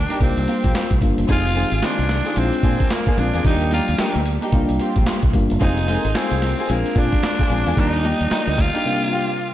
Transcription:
Already playing: fm electric piano G3 A#3 D4 F4, tenor saxophone D4
0.10 string section A#3 D4 D#4 G4, closed hi-hat
0.21 fingered electric bass C2, fm electric piano G3 A#3 D4 F4, tenor saxophone C4, kick, closed hi-hat
0.37 fingered electric bass C2, closed hi-hat
0.47 string section A#3 C4 F4 G4, closed hi-hat
0.64 fingered electric bass A#1, kick, closed hi-hat
0.75 snare, clap, closed hi-hat
0.91 fingered electric bass C2, kick, closed hi-hat
1.02 fingered electric bass G1, fm electric piano G3 A#3 D4 F4, kick, closed hi-hat
1.18 fingered electric bass F#1, closed hi-hat
1.28 fingered electric bass F1, fm electric piano G#3 C4 D#4 G4, string section C4 D#4 F4 G#4, tenor saxophone F4, kick, closed hi-hat
1.46 closed hi-hat
1.55 fm electric piano D#3 G#3 C4 G4, string section C4 D#4 F4 G#4, closed hi-hat
1.72 fingered electric bass G#1, closed hi-hat
1.82 string section C4 D#4 F4 G#4, tenor saxophone D4, snare, clap, closed hi-hat
1.99 fingered electric bass C2, closed hi-hat
2.09 snare, closed hi-hat
2.25 string section C4 D#4 F4 G#4, closed hi-hat
2.36 fingered electric bass A#1, fm electric piano G#3 C4 D4 E4, tenor saxophone C4, closed hi-hat
2.45 fm electric piano F4
2.53 closed hi-hat
2.63 fingered electric bass A#2, string section A#3 D4 F4 G#4, kick, closed hi-hat
2.80 kick, closed hi-hat
2.90 tenor saxophone A#3, snare, clap, closed hi-hat
3.07 string section A#3 D4 F4 G#4, kick, closed hi-hat
3.17 fingered electric bass A#1, fm electric piano G#3 C4 D4 F4, tenor saxophone D4, closed hi-hat
3.34 fingered electric bass E2, string section A#3 D4 F4 G#4, closed hi-hat
3.44 fingered electric bass D#2, fm electric piano G3 A#3 D4 F4, string section A#3 D4 D#4 G4, tenor saxophone D#4, kick, closed hi-hat
3.61 closed hi-hat
3.71 fm electric piano F#3 A#3 D4 F4, string section A#3 D4 D#4 G4, tenor saxophone F4, closed hi-hat
3.78 fm electric piano G3
3.88 fingered electric bass D#2, closed hi-hat
3.98 string section A#3 D4 D#4 G4, muted fingered electric bass stroke, snare, clap, closed hi-hat
4.15 fingered electric bass D2, closed hi-hat
4.26 closed hi-hat
4.42 string section A#3 D4 D#4 G4, closed hi-hat
4.52 fingered electric bass C2, fm electric piano G3 A#3 D4 F4, kick, closed hi-hat
4.69 fingered electric bass C2, closed hi-hat
4.79 string section A#3 C4 F4 G4, closed hi-hat
4.96 fingered electric bass A#1, kick, closed hi-hat
5.06 snare, clap, closed hi-hat
5.23 fingered electric bass C2, kick, closed hi-hat
5.33 fingered electric bass G1, fm electric piano G3 A#3 D4 F4, kick, closed hi-hat
5.50 fingered electric bass F#1, closed hi-hat
5.60 fingered electric bass F1, fm electric piano G#3 C4 D#4 G4, string section C4 D#4 F4 G#4, tenor saxophone D#4, kick, closed hi-hat
5.78 closed hi-hat
5.87 fm electric piano G#3 C4 D#4 A4, string section C4 D#4 F4 G#4, closed hi-hat
5.96 fm electric piano A#4
6.05 fingered electric bass G#1, closed hi-hat
6.14 string section C4 D#4 F4 G#4, tenor saxophone C4, muted fingered electric bass stroke, snare, clap, closed hi-hat
6.31 fingered electric bass C2, closed hi-hat
6.42 snare, closed hi-hat
6.58 string section C4 D#4 F4 G#4, closed hi-hat
6.69 fingered electric bass A#1, fm electric piano G#3 C4 D4 F4, tenor saxophone A#3, closed hi-hat
6.86 closed hi-hat
6.96 fingered electric bass A#2, string section A#3 D4 F4 G#4, tenor saxophone D4, kick, closed hi-hat
7.12 kick, closed hi-hat
7.23 snare, clap, closed hi-hat
7.39 string section A#3 D4 F4 G#4, kick, closed hi-hat
7.50 fingered electric bass A#1, fm electric piano G#3 C4 D4 F4, closed hi-hat
7.66 fingered electric bass E2, string section A#3 D4 F4 G#4, closed hi-hat
7.76 fingered electric bass D#2, fm electric piano G3 A#3 D4 F4, string section A#3 D4 D#4 G4, tenor saxophone D#4, kick, closed hi-hat
7.94 closed hi-hat
8.03 fm electric piano G3 A#3 F4 D5, string section A#3 D4 D#4 G4, closed hi-hat
8.21 fingered electric bass D#2, closed hi-hat
8.30 string section A#3 D4 D#4 G4, muted fingered electric bass stroke, snare, clap, closed hi-hat
8.47 fingered electric bass D2, closed hi-hat
8.58 tenor saxophone F4, kick, snare, closed hi-hat
8.74 string section A#3 D4 D#4 G4, closed hi-hat
8.85 fm electric piano C3 G3 A#3 D4 F4
9.12 string section A#3 C4 F4 G4

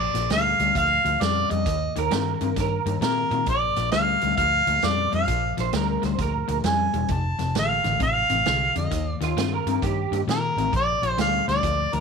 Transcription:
Already playing: overdriven electric guitar A#2 F3, harmonica D5
0.14 fingered electric bass A#1, overdriven electric guitar A#2 F3, snare, closed hi-hat
0.30 fingered electric bass D2, overdriven electric guitar A#2 G3, harmonica F5, snare, closed hi-hat
0.60 fingered electric bass D2, overdriven electric guitar A#2 G3, closed hi-hat
0.75 fingered electric bass D2, overdriven electric guitar A#2 F3, harmonica F5, kick, closed hi-hat
1.05 fingered electric bass D2, overdriven electric guitar A#2 F3, closed hi-hat
1.21 fingered electric bass F2, overdriven electric guitar A#2 G3, harmonica D5, snare, closed hi-hat
1.50 fingered electric bass F2, overdriven electric guitar A#2 G3, harmonica D#5, closed hi-hat
1.66 fingered electric bass D#2, overdriven electric guitar D#3 A#3, kick, closed hi-hat
1.96 fingered electric bass D#2, overdriven electric guitar D#3 A#3, clean electric guitar A#4, closed hi-hat
2.11 fingered electric bass G2, overdriven electric guitar D#3 C4, snare, closed hi-hat
2.41 fingered electric bass G2, overdriven electric guitar D#3 C4, closed hi-hat
2.56 fingered electric bass G2, overdriven electric guitar D#3 A#3, clean electric guitar A#4, kick, snare, closed hi-hat
2.86 fingered electric bass G2, overdriven electric guitar D#3 A#3, closed hi-hat
3.01 fingered electric bass A#2, overdriven electric guitar D#3 C4, harmonica A#4, snare, closed hi-hat
3.31 fingered electric bass A#2, overdriven electric guitar D#3 C4, closed hi-hat
3.46 fingered electric bass A#1, overdriven electric guitar A#2 F3, harmonica D5, kick, closed hi-hat
3.76 fingered electric bass A#1, overdriven electric guitar A#2 F3, snare, closed hi-hat
3.92 fingered electric bass D2, overdriven electric guitar A#2 G3, harmonica F5, snare, closed hi-hat
4.21 fingered electric bass D2, overdriven electric guitar A#2 G3, closed hi-hat
4.37 fingered electric bass D2, overdriven electric guitar A#2 F3, harmonica F5, kick, closed hi-hat
4.67 fingered electric bass D2, overdriven electric guitar A#2 F3, closed hi-hat
4.82 fingered electric bass F2, overdriven electric guitar A#2 G3, harmonica D5, snare, closed hi-hat
5.12 fingered electric bass F2, overdriven electric guitar A#2 G3, harmonica F5, closed hi-hat
5.28 fingered electric bass A#1, overdriven electric guitar A#2 F3, kick, closed hi-hat
5.57 fingered electric bass A#1, overdriven electric guitar A#2 F3, clean electric guitar C5, snare, closed hi-hat
5.73 fingered electric bass D2, overdriven electric guitar A#2 G3, clean electric guitar A#4, snare, closed hi-hat
6.02 fingered electric bass D2, overdriven electric guitar A#2 G3, clean electric guitar C5, snare, closed hi-hat
6.18 fingered electric bass D2, overdriven electric guitar A#2 F3, clean electric guitar A#4, kick, snare, closed hi-hat
6.48 fingered electric bass D2, overdriven electric guitar A#2 F3, closed hi-hat
6.64 fingered electric bass F2, overdriven electric guitar A#2 G3, harmonica G#5, snare, closed hi-hat
6.94 fingered electric bass E1, overdriven electric guitar A#2 G3, closed hi-hat
7.08 fingered electric bass F1, overdriven electric guitar F2 C3, harmonica A5, kick, closed hi-hat
7.39 fingered electric bass F1, overdriven electric guitar F2 C3, snare, closed hi-hat
7.55 fingered electric bass A1, overdriven electric guitar F2 D3, snare, closed hi-hat
7.59 harmonica F5
7.84 fingered electric bass A1, overdriven electric guitar F2 D3, snare, closed hi-hat
8.00 fingered electric bass A1, overdriven electric guitar F2 C3, harmonica F5, kick, closed hi-hat
8.30 fingered electric bass A1, overdriven electric guitar F2 C3, closed hi-hat
8.46 fingered electric bass C2, overdriven electric guitar F2 D3, snare, closed hi-hat
8.75 fingered electric bass F2, overdriven electric guitar F2 D3, harmonica D#5, closed hi-hat
8.91 fingered electric bass D#2, overdriven electric guitar D#3 A#3, kick, closed hi-hat
9.09 harmonica D5
9.21 fingered electric bass D#2, overdriven electric guitar D#3 A#3, clean electric guitar F4, snare, closed hi-hat
9.37 fingered electric bass G2, overdriven electric guitar D#3 C4, snare, closed hi-hat
9.54 clean electric guitar A#4
9.66 fingered electric bass G2, overdriven electric guitar D#3 C4, closed hi-hat
9.82 fingered electric bass G2, overdriven electric guitar D#3 A#3, clean electric guitar G4, kick, closed hi-hat
10.11 fingered electric bass G2, overdriven electric guitar D#3 A#3, closed hi-hat
10.27 fingered electric bass A#2, overdriven electric guitar D#3 C4, harmonica A#4, snare, closed hi-hat
10.56 fingered electric bass A1, overdriven electric guitar D#3 C4, closed hi-hat
10.73 fingered electric bass A#1, overdriven electric guitar A#2 F3, harmonica D5, kick, closed hi-hat
11.02 fingered electric bass A#1, overdriven electric guitar A#2 F3, closed hi-hat
11.17 fingered electric bass D2, overdriven electric guitar A#2 G3, harmonica F5, snare, closed hi-hat
11.48 fingered electric bass D2, overdriven electric guitar A#2 G3, harmonica D5, snare, closed hi-hat
11.63 fingered electric bass D2, overdriven electric guitar A#2 F3, kick, closed hi-hat
11.93 fingered electric bass D2, overdriven electric guitar A#2 F3, harmonica A#4, closed hi-hat

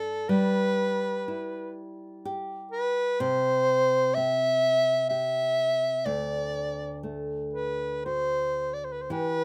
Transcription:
Already playing: nylon-string guitar G2 A3 D4, soprano saxophone A4
0.29 nylon-string guitar G3, soprano saxophone B4
1.28 nylon-string guitar E4
2.25 nylon-string guitar G4
2.71 soprano saxophone B4
3.20 nylon-string guitar C3, soprano saxophone C5
4.14 nylon-string guitar C4, soprano saxophone E5
5.09 nylon-string guitar G4, soprano saxophone E5
6.05 nylon-string guitar D2, soprano saxophone D5
7.03 nylon-string guitar A3
7.53 soprano saxophone B4
8.05 nylon-string guitar F#4, soprano saxophone C5
8.73 soprano saxophone D5
8.84 soprano saxophone C5
8.92 soprano saxophone B4
9.02 soprano saxophone C5
9.10 nylon-string guitar E3 G4, soprano saxophone B4

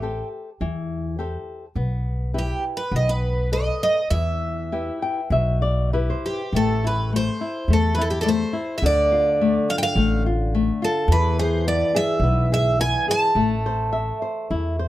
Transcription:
Already playing: upright bass A1, twelve-string acoustic guitar G4
0.02 nylon-string guitar G4 A4 C5
0.61 upright bass E2, nylon-string guitar E3
1.19 nylon-string guitar G4 A4 C5
1.76 upright bass B1, nylon-string guitar B3
2.34 nylon-string guitar E4 G4 B4
2.38 twelve-string acoustic guitar G4
2.77 twelve-string acoustic guitar B4
2.92 upright bass B1, nylon-string guitar B3
2.96 twelve-string acoustic guitar D#5
3.09 twelve-string acoustic guitar B4
3.52 nylon-string guitar A4 B4 D#5, twelve-string acoustic guitar D#5
3.83 twelve-string acoustic guitar D#5
4.11 upright bass E2, nylon-string guitar E3, twelve-string acoustic guitar E5
4.72 nylon-string guitar E4 G4 B4
5.02 nylon-string guitar G5
5.30 upright bass B1, nylon-string guitar B2 E5
5.62 nylon-string guitar D5
5.93 nylon-string guitar E4 G4 B4
6.10 nylon-string guitar C5
6.26 twelve-string acoustic guitar G4
6.53 upright bass A1, nylon-string guitar A3, twelve-string acoustic guitar A4
6.84 nylon-string guitar E4, twelve-string acoustic guitar B4
7.13 nylon-string guitar A3, twelve-string acoustic guitar C5
7.41 nylon-string guitar E4
7.68 upright bass E2, nylon-string guitar A3
7.73 twelve-string acoustic guitar A4
7.95 nylon-string guitar E4, twelve-string acoustic guitar B4
8.01 twelve-string acoustic guitar A4
8.10 twelve-string acoustic guitar G4
8.21 twelve-string acoustic guitar A4 D5
8.26 nylon-string guitar A3, twelve-string acoustic guitar C5
8.53 nylon-string guitar E4
8.78 twelve-string acoustic guitar E5
8.82 upright bass D2, nylon-string guitar D3
8.86 twelve-string acoustic guitar D5
9.12 nylon-string guitar F4
9.41 nylon-string guitar A3
9.70 nylon-string guitar F4, twelve-string acoustic guitar F5
9.78 twelve-string acoustic guitar G5
9.83 twelve-string acoustic guitar F5
9.96 upright bass A1, nylon-string guitar A3
10.26 nylon-string guitar F4
10.55 nylon-string guitar A3
10.82 nylon-string guitar F4, twelve-string acoustic guitar A4
11.08 upright bass E2, nylon-string guitar E3
11.12 twelve-string acoustic guitar B4
11.39 nylon-string guitar G#4, twelve-string acoustic guitar C5
11.67 nylon-string guitar B3, twelve-string acoustic guitar D5
11.95 nylon-string guitar G#4, twelve-string acoustic guitar E5
12.20 upright bass B1, nylon-string guitar B3
12.52 nylon-string guitar G#4, twelve-string acoustic guitar E5
12.80 nylon-string guitar B3, twelve-string acoustic guitar G#5
13.08 nylon-string guitar G#4, twelve-string acoustic guitar A5
13.35 upright bass A1, nylon-string guitar A3
13.66 nylon-string guitar C5
13.93 nylon-string guitar E5
14.22 nylon-string guitar C5
14.51 upright bass E2, nylon-string guitar E4, twelve-string acoustic guitar G#5
14.79 nylon-string guitar C5

